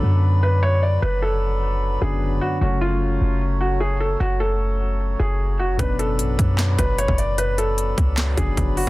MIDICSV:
0, 0, Header, 1, 6, 480
1, 0, Start_track
1, 0, Tempo, 397351
1, 1237, Time_signature, 4, 2, 24, 8
1, 10745, End_track
2, 0, Start_track
2, 0, Title_t, "Harmonium"
2, 0, Program_c, 0, 20
2, 0, Note_on_c, 0, 54, 82
2, 0, Note_on_c, 0, 71, 76
2, 0, Note_on_c, 0, 74, 73
2, 0, Note_on_c, 0, 83, 89
2, 3118, Note_off_c, 0, 71, 0
2, 3118, Note_off_c, 0, 74, 0
2, 3118, Note_off_c, 0, 83, 0
2, 3157, Note_on_c, 0, 57, 72
2, 3157, Note_on_c, 0, 73, 74
2, 6958, Note_off_c, 0, 57, 0
2, 6958, Note_off_c, 0, 73, 0
2, 6996, Note_on_c, 0, 83, 92
2, 6997, Note_on_c, 0, 71, 71
2, 6997, Note_on_c, 0, 74, 76
2, 10745, Note_off_c, 0, 54, 0
2, 10745, Note_off_c, 0, 71, 0
2, 10745, Note_off_c, 0, 74, 0
2, 10745, Note_off_c, 0, 83, 0
2, 10745, End_track
3, 0, Start_track
3, 0, Title_t, "Felt piano"
3, 0, Program_c, 1, 0
3, 0, Note_on_c, 1, 69, 80
3, 234, Note_off_c, 1, 69, 0
3, 517, Note_on_c, 1, 71, 73
3, 705, Note_off_c, 1, 71, 0
3, 757, Note_on_c, 1, 73, 85
3, 945, Note_off_c, 1, 73, 0
3, 998, Note_on_c, 1, 74, 79
3, 1186, Note_off_c, 1, 74, 0
3, 1237, Note_on_c, 1, 71, 86
3, 1425, Note_off_c, 1, 71, 0
3, 1477, Note_on_c, 1, 69, 83
3, 2389, Note_off_c, 1, 69, 0
3, 2436, Note_on_c, 1, 68, 78
3, 2888, Note_off_c, 1, 68, 0
3, 2916, Note_on_c, 1, 66, 80
3, 3105, Note_off_c, 1, 66, 0
3, 3156, Note_on_c, 1, 66, 78
3, 3345, Note_off_c, 1, 66, 0
3, 3396, Note_on_c, 1, 65, 85
3, 4073, Note_off_c, 1, 65, 0
3, 4355, Note_on_c, 1, 66, 71
3, 4544, Note_off_c, 1, 66, 0
3, 4596, Note_on_c, 1, 68, 83
3, 4785, Note_off_c, 1, 68, 0
3, 4836, Note_on_c, 1, 69, 79
3, 5025, Note_off_c, 1, 69, 0
3, 5076, Note_on_c, 1, 66, 90
3, 5264, Note_off_c, 1, 66, 0
3, 5316, Note_on_c, 1, 69, 84
3, 6228, Note_off_c, 1, 69, 0
3, 6275, Note_on_c, 1, 68, 77
3, 6727, Note_off_c, 1, 68, 0
3, 6757, Note_on_c, 1, 66, 79
3, 6945, Note_off_c, 1, 66, 0
3, 6997, Note_on_c, 1, 71, 84
3, 7185, Note_off_c, 1, 71, 0
3, 7237, Note_on_c, 1, 69, 80
3, 7914, Note_off_c, 1, 69, 0
3, 8197, Note_on_c, 1, 71, 73
3, 8385, Note_off_c, 1, 71, 0
3, 8437, Note_on_c, 1, 73, 84
3, 8625, Note_off_c, 1, 73, 0
3, 8677, Note_on_c, 1, 74, 81
3, 8865, Note_off_c, 1, 74, 0
3, 8917, Note_on_c, 1, 71, 86
3, 9105, Note_off_c, 1, 71, 0
3, 9158, Note_on_c, 1, 69, 84
3, 10069, Note_off_c, 1, 69, 0
3, 10116, Note_on_c, 1, 68, 80
3, 10568, Note_off_c, 1, 68, 0
3, 10596, Note_on_c, 1, 66, 80
3, 10745, Note_off_c, 1, 66, 0
3, 10745, End_track
4, 0, Start_track
4, 0, Title_t, "Grand piano"
4, 0, Program_c, 2, 0
4, 0, Control_c, 2, 64, 127
4, 0, Note_on_c, 2, 42, 65
4, 0, Note_on_c, 2, 50, 62
4, 0, Note_on_c, 2, 54, 62
4, 0, Note_on_c, 2, 59, 64
4, 0, Note_on_c, 2, 62, 80
4, 2374, Note_off_c, 2, 42, 0
4, 2381, Note_off_c, 2, 50, 0
4, 2388, Note_off_c, 2, 54, 0
4, 2394, Note_off_c, 2, 59, 0
4, 2401, Note_off_c, 2, 62, 0
4, 2426, Note_on_c, 2, 42, 49
4, 2433, Note_on_c, 2, 50, 46
4, 2439, Note_on_c, 2, 54, 49
4, 2446, Note_on_c, 2, 59, 45
4, 2452, Note_on_c, 2, 62, 58
4, 3131, Note_off_c, 2, 54, 0
4, 3131, Note_on_c, 2, 49, 67
4, 3149, Note_on_c, 2, 54, 61
4, 3151, Note_off_c, 2, 42, 0
4, 3155, Note_off_c, 2, 50, 0
4, 3161, Note_off_c, 2, 59, 0
4, 3164, Note_off_c, 2, 62, 0
4, 3167, Note_on_c, 2, 57, 64
4, 3174, Control_c, 2, 64, 0
4, 3184, Note_on_c, 2, 61, 76
4, 3404, Control_c, 2, 64, 127
4, 6936, Note_off_c, 2, 49, 0
4, 6944, Note_off_c, 2, 54, 0
4, 6953, Note_off_c, 2, 57, 0
4, 6962, Note_off_c, 2, 61, 0
4, 6969, Note_on_c, 2, 42, 63
4, 6982, Note_on_c, 2, 47, 62
4, 6996, Note_on_c, 2, 54, 64
4, 7009, Note_on_c, 2, 59, 62
4, 7014, Control_c, 2, 64, 0
4, 7022, Note_on_c, 2, 62, 81
4, 7193, Control_c, 2, 64, 127
4, 10055, Note_off_c, 2, 42, 0
4, 10061, Note_off_c, 2, 47, 0
4, 10068, Note_off_c, 2, 54, 0
4, 10074, Note_off_c, 2, 59, 0
4, 10081, Note_off_c, 2, 62, 0
4, 10106, Note_on_c, 2, 42, 49
4, 10113, Note_on_c, 2, 50, 46
4, 10119, Note_on_c, 2, 54, 50
4, 10126, Note_on_c, 2, 59, 42
4, 10133, Note_on_c, 2, 62, 56
4, 10745, Note_off_c, 2, 42, 0
4, 10745, Note_off_c, 2, 50, 0
4, 10745, Note_off_c, 2, 54, 0
4, 10745, Note_off_c, 2, 59, 0
4, 10745, Note_off_c, 2, 62, 0
4, 10745, End_track
5, 0, Start_track
5, 0, Title_t, "808-style bass"
5, 0, Program_c, 3, 38
5, 36, Note_on_c, 3, 42, 104
5, 1189, Note_off_c, 3, 42, 0
5, 1236, Note_on_c, 3, 30, 112
5, 2388, Note_off_c, 3, 30, 0
5, 2437, Note_on_c, 3, 30, 110
5, 2897, Note_off_c, 3, 30, 0
5, 3156, Note_on_c, 3, 30, 110
5, 3848, Note_off_c, 3, 30, 0
5, 3876, Note_on_c, 3, 30, 101
5, 5029, Note_off_c, 3, 30, 0
5, 5076, Note_on_c, 3, 30, 113
5, 6228, Note_off_c, 3, 30, 0
5, 6277, Note_on_c, 3, 30, 113
5, 6756, Note_on_c, 3, 29, 99
5, 6775, Note_off_c, 3, 30, 0
5, 6876, Note_on_c, 3, 30, 99
5, 6894, Note_off_c, 3, 29, 0
5, 6990, Note_off_c, 3, 30, 0
5, 6997, Note_on_c, 3, 30, 108
5, 7476, Note_on_c, 3, 33, 96
5, 7494, Note_off_c, 3, 30, 0
5, 7705, Note_off_c, 3, 33, 0
5, 7717, Note_on_c, 3, 42, 106
5, 8177, Note_off_c, 3, 42, 0
5, 8197, Note_on_c, 3, 30, 109
5, 8542, Note_off_c, 3, 30, 0
5, 8557, Note_on_c, 3, 30, 100
5, 9593, Note_off_c, 3, 30, 0
5, 9637, Note_on_c, 3, 37, 104
5, 10098, Note_off_c, 3, 37, 0
5, 10117, Note_on_c, 3, 30, 110
5, 10347, Note_off_c, 3, 30, 0
5, 10357, Note_on_c, 3, 30, 101
5, 10702, Note_off_c, 3, 30, 0
5, 10745, End_track
6, 0, Start_track
6, 0, Title_t, "Drums"
6, 6997, Note_on_c, 9, 36, 110
6, 6997, Note_on_c, 9, 42, 87
6, 7118, Note_off_c, 9, 36, 0
6, 7118, Note_off_c, 9, 42, 0
6, 7239, Note_on_c, 9, 42, 60
6, 7360, Note_off_c, 9, 42, 0
6, 7478, Note_on_c, 9, 42, 75
6, 7598, Note_off_c, 9, 42, 0
6, 7717, Note_on_c, 9, 36, 96
6, 7718, Note_on_c, 9, 42, 82
6, 7838, Note_off_c, 9, 36, 0
6, 7838, Note_off_c, 9, 42, 0
6, 7956, Note_on_c, 9, 38, 121
6, 7956, Note_on_c, 9, 39, 91
6, 7958, Note_on_c, 9, 42, 77
6, 8076, Note_off_c, 9, 39, 0
6, 8077, Note_off_c, 9, 38, 0
6, 8079, Note_off_c, 9, 42, 0
6, 8197, Note_on_c, 9, 36, 91
6, 8198, Note_on_c, 9, 42, 84
6, 8318, Note_off_c, 9, 36, 0
6, 8319, Note_off_c, 9, 42, 0
6, 8437, Note_on_c, 9, 42, 75
6, 8557, Note_on_c, 9, 36, 91
6, 8558, Note_off_c, 9, 42, 0
6, 8676, Note_on_c, 9, 42, 86
6, 8678, Note_off_c, 9, 36, 0
6, 8797, Note_off_c, 9, 42, 0
6, 8917, Note_on_c, 9, 42, 90
6, 9038, Note_off_c, 9, 42, 0
6, 9159, Note_on_c, 9, 42, 59
6, 9280, Note_off_c, 9, 42, 0
6, 9398, Note_on_c, 9, 42, 77
6, 9519, Note_off_c, 9, 42, 0
6, 9637, Note_on_c, 9, 36, 99
6, 9638, Note_on_c, 9, 42, 78
6, 9758, Note_off_c, 9, 36, 0
6, 9758, Note_off_c, 9, 42, 0
6, 9876, Note_on_c, 9, 39, 96
6, 9877, Note_on_c, 9, 38, 121
6, 9878, Note_on_c, 9, 42, 75
6, 9997, Note_off_c, 9, 39, 0
6, 9998, Note_off_c, 9, 38, 0
6, 9999, Note_off_c, 9, 42, 0
6, 10117, Note_on_c, 9, 36, 97
6, 10118, Note_on_c, 9, 42, 83
6, 10238, Note_off_c, 9, 36, 0
6, 10239, Note_off_c, 9, 42, 0
6, 10357, Note_on_c, 9, 36, 92
6, 10357, Note_on_c, 9, 42, 78
6, 10477, Note_off_c, 9, 36, 0
6, 10478, Note_off_c, 9, 42, 0
6, 10596, Note_on_c, 9, 46, 66
6, 10717, Note_off_c, 9, 46, 0
6, 10745, End_track
0, 0, End_of_file